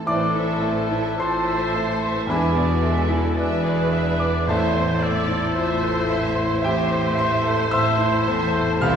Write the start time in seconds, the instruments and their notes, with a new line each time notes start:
0.06 double bass section A1, grand piano A2 D5 D6, cello section A2, trombone section E3 A3, french horn section C4 E4, violin section C4 A4 C5, clarinet E4, viola section A4, oboe B4, flute section A5
0.35 grand piano E3, violin section E4 C5 E5
0.62 grand piano A3, violin section C4 A4 C5
0.91 grand piano E4, violin section E4 C5 E5
1.17 double bass section A1, cello section A2, violin section C4 A4 C5, clarinet F4, oboe A4, viola section C5, grand piano C5 C6
1.22 grand piano A5
1.45 violin section E4 C5 E5, grand piano A4
1.72 violin section C4 A4 C5, clarinet E4, grand piano E5
2.00 violin section E4 C5 E5, grand piano C6
2.26 double bass section E1, grand piano E2 B5, cello section E2, trombone section E3 G#3, clarinet D4, violin section D4 G#4 E5, viola section G#4, oboe D5, flute section G#5
2.31 french horn section D4 E4, grand piano B4 G#5
2.55 grand piano B2, violin section E4 B4 D5
2.83 grand piano G#3, violin section D4 G#4 E5, viola section A4
3.08 grand piano E4, violin section E4 B4 D5
3.37 double bass section E1, cello section E2, clarinet D4, violin section D4 G#4 E5, viola section B4, oboe B4, grand piano D5, flute section E5
3.62 grand piano G#4, violin section D5
3.66 violin section E4 B4
3.92 violin section D4 G#4 E5, flute section D5, grand piano E5
4.20 violin section E4 B4 D5, grand piano D6
4.46 grand piano A1 A4 E5 A5, double bass section A1, cello section A2, trombone section E3 A3, violin section C4 A4 E5, french horn section C4 E4, clarinet E4, viola section C5, oboe C5
4.74 grand piano E2, violin section E4 C5
5.00 grand piano A3, violin section C4 A4 E5, oboe A4, viola section D5
5.28 grand piano E4, violin section E4 C5
5.55 double bass section A1, cello section A2, violin section C4 A4 E5, clarinet F4, grand piano C5, viola section C5, flute section C5
5.82 violin section E4 C5, grand piano A4
6.08 clarinet E4, violin section A4 E5, grand piano E5
6.13 violin section C4
6.35 violin section E4 C5, grand piano C6
6.62 double bass section A1, cello section A2, trombone section E3 A3, violin section C4 A4 E5, french horn section C4 E4, grand piano G4 E5 G5, viola section C5, oboe C5, flute section E5
6.88 violin section E4 C5, grand piano C6
7.15 violin section A4 E5, grand piano E5 C6
7.19 violin section C4, grand piano C5
7.42 violin section E4 C5, grand piano A4
7.67 double bass section A1, grand piano C5, violin section E5, flute section A5
7.71 cello section A2, violin section C4 A4, clarinet E4, grand piano E5 C6 E6
7.97 grand piano E4, violin section E4 C5
8.24 grand piano E2, violin section C4 A4 E5, clarinet A4
8.52 grand piano A3, violin section E4 C5
8.79 double bass section C2, grand piano C2 F5 F6, timpani C3, cello section C3, trombone section E3 G3, french horn section C4 G4, violin section C4 G4 E5, clarinet G4, viola section A4, oboe C5, flute section G5